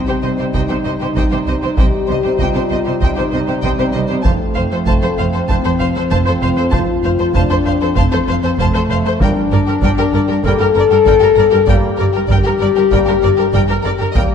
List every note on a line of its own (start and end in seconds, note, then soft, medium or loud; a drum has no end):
0.00 4.21 G3 medium
0.00 0.50 C4 medium
0.00 4.21 D#4 medium
0.07 0.14 C3 soft
0.07 0.14 G4 soft
0.07 0.13 C5 soft
0.07 0.15 C5 soft
0.22 0.29 C2 soft
0.22 0.29 C3 soft
0.22 0.29 C5 soft
0.22 0.30 C5 soft
0.22 0.29 D#5 soft
0.38 0.45 C3 soft
0.38 0.45 G4 soft
0.38 0.44 C5 soft
0.38 0.46 C5 soft
0.53 0.60 C2 medium
0.53 0.61 C3 soft
0.53 1.75 D#4 medium
0.53 0.61 C5 soft
0.53 0.60 D#5 medium
0.53 0.60 G5 soft
0.53 taiko medium
0.69 0.76 C3 soft
0.69 0.75 G4 soft
0.69 0.76 C5 soft
0.84 0.91 C2 soft
0.84 0.91 C3 soft
0.84 0.91 C5 soft
0.84 0.92 C5 soft
0.84 0.92 D#5 soft
1.00 1.07 C3 soft
1.00 1.07 G4 soft
1.00 1.07 C5 soft
1.15 1.21 C2 soft
1.15 1.23 C3 soft
1.15 1.22 C5 medium
1.15 1.22 D#5 medium
1.15 1.24 G5 soft
1.15 taiko medium
1.31 1.39 C3 soft
1.31 1.37 G4 soft
1.31 1.38 C5 soft
1.46 1.53 C2 soft
1.46 1.54 C3 soft
1.46 1.53 C5 soft
1.46 1.54 D#5 soft
1.62 1.69 C3 soft
1.62 1.68 G4 soft
1.62 1.69 C5 soft
1.62 1.70 C5 soft
1.77 1.83 C2 soft
1.77 1.84 C3 medium
1.77 2.39 G4 medium
1.77 1.84 C5 medium
1.77 1.83 D#5 soft
1.77 1.85 G5 medium
1.77 taiko medium
2.08 2.15 C2 soft
2.08 2.15 C3 soft
2.08 2.14 C5 soft
2.08 2.15 C5 soft
2.08 2.17 D#5 soft
2.23 2.31 C3 soft
2.23 2.29 G4 soft
2.23 2.30 C5 soft
2.23 2.32 C5 soft
2.39 2.46 C2 medium
2.39 2.46 C3 medium
2.39 3.01 F4 medium
2.39 2.46 C5 medium
2.39 2.45 D#5 medium
2.39 2.47 G5 medium
2.39 taiko medium
2.54 2.61 C3 soft
2.54 2.60 G4 soft
2.54 2.62 C5 soft
2.70 2.77 C2 soft
2.70 2.77 C3 soft
2.70 2.76 C5 soft
2.70 2.77 C5 soft
2.70 2.78 D#5 soft
2.84 2.93 C3 soft
2.84 2.91 G4 soft
2.84 2.92 C5 soft
2.84 2.93 C5 soft
3.00 3.08 C2 medium
3.00 3.08 C3 medium
3.00 3.64 D#4 medium
3.00 3.08 C5 soft
3.00 3.07 D#5 medium
3.00 3.09 G5 medium
3.00 taiko medium
3.16 3.24 C3 soft
3.16 3.22 G4 soft
3.16 3.23 C5 soft
3.16 3.24 C5 soft
3.32 3.39 C2 soft
3.32 3.39 C3 soft
3.32 3.38 C5 soft
3.32 3.39 D#5 soft
3.47 3.55 C3 soft
3.47 3.54 G4 soft
3.47 3.54 C5 soft
3.63 3.70 C2 medium
3.63 3.70 C3 medium
3.63 4.25 C4 medium
3.63 3.70 C5 medium
3.63 3.70 D#5 soft
3.63 3.69 G5 medium
3.63 taiko medium
3.79 3.85 C3 soft
3.79 3.86 G4 soft
3.79 3.85 C5 soft
3.93 4.01 C2 soft
3.93 4.01 C3 soft
3.93 4.00 C5 soft
3.93 3.99 D#5 soft
4.08 4.17 C3 soft
4.08 4.16 G4 soft
4.08 4.14 C5 soft
4.08 4.16 C5 soft
4.23 4.31 F1 medium
4.23 4.32 F2 medium
4.23 9.02 F3 soft
4.23 5.32 A3 medium
4.23 9.02 C4 soft
4.23 4.31 C5 medium
4.23 4.31 F5 soft
4.23 4.29 A5 medium
4.23 taiko medium
4.54 4.63 F1 soft
4.54 4.63 F2 soft
4.54 4.62 C5 soft
4.54 4.63 C5 soft
4.54 4.61 F5 soft
4.71 4.78 F2 soft
4.71 4.78 A4 soft
4.71 4.77 C5 soft
4.71 4.78 C5 soft
4.86 4.93 F1 medium
4.86 4.94 F2 medium
4.86 4.93 C5 medium
4.86 4.94 F5 medium
4.86 4.92 A5 medium
4.86 taiko medium
5.02 5.09 F2 soft
5.02 5.09 A4 soft
5.02 5.08 C5 soft
5.02 5.10 C5 soft
5.18 5.25 F1 soft
5.18 5.25 F2 soft
5.18 5.25 C5 soft
5.18 5.25 F5 soft
5.34 5.40 F2 soft
5.34 5.40 A4 soft
5.34 5.40 C5 soft
5.49 5.55 F1 medium
5.49 5.55 F2 medium
5.49 6.70 C4 medium
5.49 5.56 C5 medium
5.49 5.56 F5 medium
5.49 5.55 A5 soft
5.49 taiko medium
5.65 5.71 F2 soft
5.65 5.71 A4 soft
5.65 5.71 C5 soft
5.80 5.87 F1 soft
5.80 5.87 F2 soft
5.80 5.86 C5 soft
5.80 5.86 F5 soft
5.96 6.02 F2 soft
5.96 6.02 A4 medium
5.96 6.02 C5 soft
6.10 6.18 F1 medium
6.10 6.17 F2 medium
6.10 6.17 C5 medium
6.10 6.18 F5 medium
6.10 6.17 A5 medium
6.10 taiko medium
6.26 6.33 F2 soft
6.26 6.34 A4 soft
6.26 6.32 C5 soft
6.26 6.34 C5 medium
6.42 6.49 F1 soft
6.42 6.48 F2 soft
6.42 6.48 C5 soft
6.42 6.49 C5 soft
6.42 6.49 F5 soft
6.57 6.63 F2 soft
6.57 6.64 A4 soft
6.57 6.63 C5 soft
6.72 6.79 F1 medium
6.72 6.79 F2 medium
6.72 7.35 F4 medium
6.72 6.78 C5 medium
6.72 6.79 F5 medium
6.72 6.78 A5 medium
6.72 taiko medium
7.03 7.10 F1 soft
7.03 7.10 F2 soft
7.03 7.10 C5 soft
7.03 7.10 F5 soft
7.19 7.25 F2 soft
7.19 7.26 A4 soft
7.19 7.25 C5 soft
7.19 7.26 C5 soft
7.34 7.41 F1 medium
7.34 7.41 F2 medium
7.34 7.97 D4 medium
7.34 7.40 C5 medium
7.34 7.42 F5 medium
7.34 7.40 A5 medium
7.34 taiko medium
7.50 7.56 F2 soft
7.50 7.56 A4 soft
7.50 7.57 C5 soft
7.65 7.72 F1 soft
7.65 7.72 F2 soft
7.65 7.72 C5 soft
7.65 7.72 F5 soft
7.81 7.87 F2 soft
7.81 7.87 A4 soft
7.81 7.88 C5 soft
7.96 8.03 F1 medium
7.96 8.03 F2 medium
7.96 8.58 C4 medium
7.96 8.02 C5 medium
7.96 8.02 F5 medium
7.96 8.03 A5 medium
7.96 taiko medium
8.11 8.18 F2 soft
8.11 8.18 A4 soft
8.11 8.18 C5 soft
8.11 8.19 C5 soft
8.28 8.34 F1 soft
8.28 8.34 F2 soft
8.28 8.34 C5 medium
8.28 8.34 F5 medium
8.43 8.49 F2 soft
8.43 8.50 A4 medium
8.43 8.49 C5 soft
8.43 8.50 C5 soft
8.58 8.64 F1 medium
8.58 8.65 F2 medium
8.58 9.20 A3 medium
8.58 8.65 C5 medium
8.58 8.66 F5 medium
8.58 8.66 A5 medium
8.58 taiko medium
8.74 8.81 F2 medium
8.74 8.81 A4 medium
8.74 8.80 C5 soft
8.74 8.81 C5 medium
8.89 8.96 F1 medium
8.89 8.96 F2 soft
8.89 8.95 C5 medium
8.89 8.96 C5 medium
8.89 8.96 F5 medium
9.06 9.12 F2 soft
9.06 9.12 A4 medium
9.06 9.12 C5 medium
9.19 9.27 G1 medium
9.19 9.27 G2 medium
9.19 9.42 G3 medium
9.19 9.41 A#3 medium
9.19 10.44 D4 loud
9.19 9.27 A#4 medium
9.19 9.27 D5 medium
9.19 9.28 G5 medium
9.19 taiko medium
9.52 9.58 G1 medium
9.52 9.58 G2 medium
9.52 9.58 A#4 soft
9.52 9.59 A#4 soft
9.52 9.59 D5 soft
9.67 9.74 G2 soft
9.67 9.74 G4 soft
9.67 9.74 A#4 soft
9.67 9.75 A#4 medium
9.82 9.89 G1 medium
9.82 9.89 G2 medium
9.82 9.89 A#4 medium
9.82 9.89 D5 medium
9.82 9.89 G5 medium
9.82 taiko medium
9.98 10.04 G2 medium
9.98 10.05 G4 soft
9.98 10.05 A#4 medium
9.98 10.06 A#4 medium
10.13 10.19 G1 medium
10.13 10.20 G2 medium
10.13 10.19 A#4 soft
10.13 10.20 A#4 soft
10.13 10.21 D5 medium
10.29 10.35 G2 medium
10.29 10.35 G4 soft
10.29 10.35 A#4 soft
10.29 10.37 A#4 medium
10.43 10.51 G1 medium
10.43 10.50 G2 medium
10.43 10.67 G3 medium
10.43 10.66 A#3 medium
10.43 11.65 A4 loud
10.43 10.51 A#4 medium
10.43 10.51 D5 medium
10.43 10.53 G5 medium
10.43 taiko medium
10.59 10.65 G2 soft
10.59 10.66 G4 medium
10.59 10.66 A#4 medium
10.59 10.68 A#4 medium
10.75 10.81 G1 medium
10.75 10.81 G2 medium
10.75 10.81 A#4 medium
10.75 10.82 A#4 medium
10.75 10.84 D5 medium
10.91 10.97 G2 medium
10.91 10.97 G4 medium
10.91 10.98 A#4 medium
10.91 10.99 A#4 medium
11.05 11.12 G1 medium
11.05 11.12 G2 medium
11.05 11.13 A#4 medium
11.05 11.12 D5 medium
11.05 11.14 G5 medium
11.05 taiko medium
11.20 11.28 G2 medium
11.20 11.27 G4 medium
11.20 11.28 A#4 medium
11.20 11.29 A#4 medium
11.36 11.43 G1 medium
11.36 11.43 G2 medium
11.36 11.42 A#4 medium
11.36 11.44 A#4 medium
11.36 11.45 D5 medium
11.50 11.59 G2 medium
11.50 11.57 G4 medium
11.50 11.58 A#4 medium
11.50 11.60 A#4 medium
11.66 11.74 G1 medium
11.66 11.75 G2 medium
11.66 11.90 G3 medium
11.66 11.90 A#3 medium
11.66 12.13 G4 medium
11.66 11.74 A#4 medium
11.66 11.73 D5 medium
11.66 11.74 G5 medium
11.66 taiko medium
11.97 12.05 G1 medium
11.97 12.06 G2 medium
11.97 12.04 A#4 medium
11.97 12.06 A#4 soft
11.97 12.05 D5 soft
12.13 12.22 G2 soft
12.13 12.19 G4 soft
12.13 12.21 A#4 medium
12.13 12.22 A#4 soft
12.28 12.36 G1 medium
12.28 12.37 G2 medium
12.28 14.12 G4 loud
12.28 12.37 A#4 medium
12.28 12.34 D5 medium
12.28 12.37 G5 medium
12.28 taiko medium
12.44 12.52 G2 medium
12.44 12.50 G4 soft
12.44 12.52 A#4 medium
12.59 12.67 G1 medium
12.59 12.67 G2 medium
12.59 12.66 A#4 soft
12.59 12.67 A#4 soft
12.59 12.68 D5 medium
12.76 12.83 G2 medium
12.76 12.82 G4 medium
12.76 12.83 A#4 soft
12.91 12.98 G1 medium
12.91 12.98 G2 medium
12.91 13.13 G3 medium
12.91 13.13 A#3 medium
12.91 12.98 A#4 medium
12.91 12.97 D5 medium
12.91 12.99 G5 medium
12.91 taiko medium
13.06 13.14 G2 medium
13.06 13.12 G4 soft
13.06 13.14 A#4 medium
13.06 13.14 A#4 soft
13.22 13.29 G1 medium
13.22 13.29 G2 medium
13.22 13.28 A#4 medium
13.22 13.29 A#4 soft
13.22 13.29 D5 medium
13.37 13.44 G2 medium
13.37 13.44 G4 medium
13.37 13.45 A#4 medium
13.37 13.46 A#4 medium
13.53 13.60 G1 medium
13.53 13.59 G2 medium
13.53 13.60 A#4 medium
13.53 13.59 D5 medium
13.53 13.60 G5 medium
13.53 taiko medium
13.68 13.75 G2 medium
13.68 13.74 G4 medium
13.68 13.76 A#4 medium
13.83 13.90 G1 medium
13.83 13.90 G2 medium
13.83 13.89 A#4 medium
13.83 13.92 A#4 medium
13.83 13.91 D5 medium
13.99 14.06 G2 soft
13.99 14.05 G4 medium
13.99 14.07 A#4 medium
14.13 14.21 D#2 medium
14.13 14.35 G3 medium
14.13 14.35 A#3 medium
14.13 14.22 A#4 medium
14.13 14.20 D#5 medium
14.13 14.22 G5 medium
14.13 taiko medium